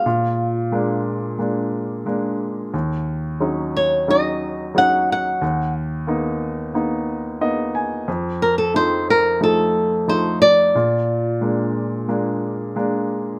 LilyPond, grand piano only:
<<
  \new Staff \with { instrumentName = "Grand piano" } { \time 4/4 \key bes \phrygian \tempo 4 = 90 r1 | r1 | r2. dis''8 aes''8 | r1 |
r1 | }
  \new Staff \with { instrumentName = "Grand piano" } { \time 4/4 \key bes \phrygian bes,4 <aes bes d'>4 <aes bes d'>4 <aes bes d'>4 | ees,4 <ges des' ees'>4 <ges des' ees'>4 <ges des' ees'>4 | dis,4 <ais b dis'>4 <ais b dis'>4 <ais b dis'>4 | f,4 <f c' ees'>4 <f a ees'>4 <f a ees'>4 |
bes,4 <aes bes d'>4 <aes bes d'>4 <aes bes d'>4 | }
>>